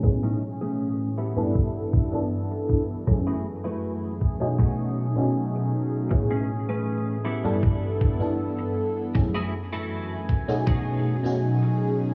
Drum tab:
BD |o---oo-o|o--oo---|o---oo--|o--oo---|